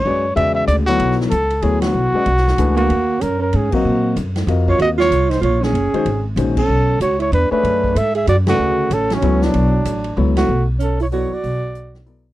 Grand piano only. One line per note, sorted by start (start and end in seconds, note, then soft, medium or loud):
0.05 0.23 G#3 medium
0.05 0.23 C#4 medium
0.05 0.23 F#4 medium
0.05 0.23 B4 medium
0.05 0.23 D5 medium
0.36 0.83 C#3 medium
0.36 0.83 G#3 medium
0.36 0.84 F#4 medium
0.36 0.84 B4 medium
0.36 0.84 D5 medium
0.87 1.29 F#3 medium
0.87 1.29 B3 medium
0.87 1.29 E4 medium
0.87 1.30 A4 medium
0.87 1.30 C#5 medium
1.62 2.10 F#3 medium
1.62 2.10 B3 medium
1.62 2.10 E4 medium
1.62 2.10 A4 medium
1.62 2.10 C#5 medium
2.14 2.25 G#3 medium
2.14 2.26 C#4 medium
2.14 2.25 F#4 medium
2.14 2.26 B4 medium
2.14 2.26 D5 medium
2.58 2.90 E3 medium
2.58 2.90 A3 medium
2.58 2.90 D4 medium
2.58 2.90 G#4 medium
2.58 2.90 B4 medium
3.73 4.14 F#3 medium
3.73 4.14 C4 medium
3.73 4.14 A#4 medium
3.73 4.15 D#5 medium
3.73 4.14 F5 medium
4.48 4.95 C4 medium
4.48 4.95 F4 medium
4.48 4.95 F#4 medium
4.48 4.96 A#4 medium
4.48 4.95 D#5 medium
5.94 6.05 D#3 medium
5.94 6.05 G#3 medium
5.94 6.05 C#4 medium
5.94 6.05 F#4 medium
5.94 6.05 C5 medium
6.37 6.55 D#3 medium
6.37 6.55 G#3 medium
6.37 6.55 C#4 medium
6.37 6.55 F#4 medium
6.37 6.55 C5 medium
7.51 7.93 A3 medium
7.51 7.93 D4 medium
7.51 7.93 G#4 medium
7.51 7.93 C#5 medium
7.51 7.93 E5 medium
8.47 8.88 C#3 medium
8.47 8.88 F#4 medium
8.47 8.88 G#4 medium
8.47 8.88 B4 medium
8.47 8.88 D5 medium
9.22 9.69 F#3 medium
9.22 9.69 B3 medium
9.22 9.69 E4 medium
9.22 9.69 A4 medium
9.22 9.70 C#5 medium
10.17 10.49 F#3 medium
10.17 10.49 B3 medium
10.17 10.49 E4 medium
10.17 10.49 A4 medium
10.17 10.49 C#5 medium
11.12 11.29 F#3 medium
11.12 11.29 B3 medium
11.12 11.29 E4 medium
11.12 11.30 A4 medium
11.12 11.30 D5 medium
12.06 12.24 F#3 medium
12.06 12.24 B3 medium
12.06 12.24 E4 medium
12.06 12.24 A4 medium
12.06 12.24 D5 medium